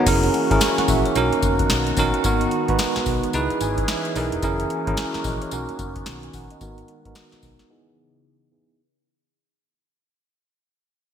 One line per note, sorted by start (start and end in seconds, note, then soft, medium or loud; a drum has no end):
0.06 0.28 F#1 loud
0.06 1.14 E3 medium
0.06 2.22 A#3 medium
0.06 0.36 C#4 medium
0.06 1.14 C#4 medium
0.06 0.36 E4 medium
0.06 1.14 F#4 medium
0.06 0.36 G#4 medium
0.06 0.36 A#4 loud
0.06 kick loud
0.06 closed hi-hat medium
0.06 crash loud
0.06 tambourine medium
0.23 closed hi-hat medium
0.34 closed hi-hat medium
0.51 0.59 G#1 medium
0.51 1.15 C#4 medium
0.51 1.16 E4 medium
0.51 1.16 G#4 medium
0.51 1.16 A#4 medium
0.51 kick medium
0.51 closed hi-hat medium
0.61 snare loud
0.61 closed hi-hat medium
0.61 tambourine loud
0.78 0.88 F#5 medium
0.78 muted fingered electric bass stroke soft
0.78 snare medium
0.78 closed hi-hat medium
0.88 1.01 A#1 medium
0.88 1.05 E5 medium
0.88 kick loud
0.88 open hi-hat medium
0.88 tambourine medium
1.05 1.32 C#5 medium
1.05 closed hi-hat medium
1.15 1.29 B1 loud
1.15 3.31 D#3 medium
1.15 4.40 B3 medium
1.15 1.84 C#4 medium
1.15 1.84 D#4 medium
1.15 3.31 F#4 medium
1.15 1.84 F#4 medium
1.15 1.85 A#4 loud
1.15 closed hi-hat medium
1.15 tambourine medium
1.33 closed hi-hat soft
1.43 1.64 F#1 medium
1.43 kick loud
1.43 closed hi-hat medium
1.43 tambourine medium
1.59 kick loud
1.59 closed hi-hat medium
1.70 1.91 B1 medium
1.70 snare loud
1.70 closed hi-hat medium
1.70 tambourine medium
1.87 closed hi-hat medium
1.97 2.11 A#1 medium
1.97 2.19 C#4 medium
1.97 2.19 D#4 medium
1.97 2.19 F#4 medium
1.97 2.20 A#4 loud
1.97 kick loud
1.97 open hi-hat medium
1.97 tambourine medium
2.14 closed hi-hat medium
2.24 2.46 G#1 loud
2.24 3.33 G#3 medium
2.24 2.54 B3 medium
2.24 2.54 D#4 medium
2.24 2.54 F#4 medium
2.24 2.54 A#4 loud
2.24 kick loud
2.24 closed hi-hat medium
2.24 tambourine medium
2.41 closed hi-hat medium
2.51 closed hi-hat medium
2.68 2.77 G#1 medium
2.68 3.34 B3 medium
2.68 3.33 D#4 medium
2.68 3.34 F#4 medium
2.68 3.34 B4 medium
2.68 kick medium
2.68 closed hi-hat medium
2.79 snare loud
2.79 closed hi-hat medium
2.79 tambourine loud
2.96 muted fingered electric bass stroke medium
2.96 snare medium
2.96 closed hi-hat medium
3.06 3.20 B1 loud
3.06 kick loud
3.06 open hi-hat medium
3.06 tambourine medium
3.23 closed hi-hat medium
3.33 3.47 C#2 loud
3.33 4.42 E3 medium
3.33 4.42 C#4 medium
3.33 4.02 D#4 loud
3.33 4.02 E4 medium
3.33 4.42 G#4 medium
3.33 4.02 G#4 medium
3.33 4.03 B4 loud
3.33 closed hi-hat medium
3.33 tambourine medium
3.50 closed hi-hat soft
3.61 3.82 G#1 medium
3.61 3.87 G#5 medium
3.61 closed hi-hat medium
3.61 tambourine medium
3.78 kick loud
3.78 closed hi-hat medium
3.88 4.40 E5 medium
3.88 snare loud
3.88 closed hi-hat medium
3.88 tambourine medium
4.05 closed hi-hat medium
4.16 4.29 B1 loud
4.16 4.37 D#4 medium
4.16 4.37 E4 medium
4.16 4.37 G#4 medium
4.16 4.38 A#4 loud
4.16 open hi-hat medium
4.16 tambourine medium
4.32 4.41 E1 medium
4.32 closed hi-hat medium
4.43 4.64 F#1 loud
4.43 5.51 E3 medium
4.43 6.59 A#3 medium
4.43 5.51 C#4 medium
4.43 4.72 C#4 medium
4.43 4.72 E4 medium
4.43 7.67 F#4 loud
4.43 4.73 G#4 medium
4.43 4.73 A#4 medium
4.43 kick loud
4.43 closed hi-hat medium
4.43 tambourine medium
4.60 closed hi-hat medium
4.70 closed hi-hat medium
4.87 4.95 G#1 medium
4.87 5.51 C#4 medium
4.87 5.52 E4 medium
4.87 5.52 G#4 medium
4.87 4.98 A#4 loud
4.87 kick medium
4.87 closed hi-hat medium
4.97 snare loud
4.97 closed hi-hat medium
4.97 tambourine medium
5.14 5.24 A#4 medium
5.14 muted fingered electric bass stroke soft
5.14 snare medium
5.14 closed hi-hat medium
5.24 5.38 A#1 medium
5.24 5.41 D#5 medium
5.24 kick loud
5.24 open hi-hat medium
5.24 tambourine medium
5.42 5.68 C#5 medium
5.42 closed hi-hat medium
5.51 5.65 B1 loud
5.51 7.68 D#3 medium
5.51 6.60 B3 medium
5.51 6.20 C#4 medium
5.51 6.20 D#4 medium
5.51 6.21 F#4 medium
5.51 6.21 A#4 loud
5.51 closed hi-hat medium
5.51 tambourine medium
5.69 closed hi-hat soft
5.79 6.00 F#1 loud
5.79 kick loud
5.79 closed hi-hat medium
5.79 tambourine medium
5.96 kick loud
5.96 closed hi-hat medium
6.06 6.28 B1 medium
6.06 snare loud
6.06 closed hi-hat medium
6.06 tambourine medium
6.23 6.34 G#5 medium
6.23 closed hi-hat medium
6.33 6.47 A#1 medium
6.33 6.50 F#5 medium
6.33 kick loud
6.33 open hi-hat medium
6.33 tambourine medium
6.50 6.77 D#5 medium
6.50 closed hi-hat medium
6.61 6.82 G#1 loud
6.61 7.69 G#3 medium
6.61 8.77 B3 medium
6.61 6.90 B3 medium
6.61 6.91 D#4 medium
6.61 6.91 F#4 medium
6.61 6.91 A#4 loud
6.61 kick loud
6.61 closed hi-hat medium
6.61 tambourine medium
6.78 closed hi-hat medium
6.88 closed hi-hat medium
7.05 7.14 G#1 medium
7.05 7.69 B3 medium
7.05 7.69 D#4 medium
7.05 7.71 F#4 medium
7.05 7.71 A#4 medium
7.05 kick medium
7.05 closed hi-hat medium
7.15 snare loud
7.15 closed hi-hat medium
7.15 tambourine medium
7.32 muted fingered electric bass stroke soft
7.32 snare medium
7.32 closed hi-hat medium
7.43 7.56 B1 loud
7.43 kick medium
7.43 open hi-hat medium
7.43 tambourine medium
7.59 snare medium
7.59 closed hi-hat soft
7.70 8.78 C#3 medium
7.70 8.78 E3 medium
7.70 8.38 B3 medium
7.70 8.38 D#4 medium
7.70 8.38 E4 medium
7.70 8.39 G#4 loud
7.70 8.78 D#5 medium
8.52 8.73 B3 medium
8.52 8.73 D#4 medium
8.52 8.73 E4 medium
8.52 8.74 G#4 medium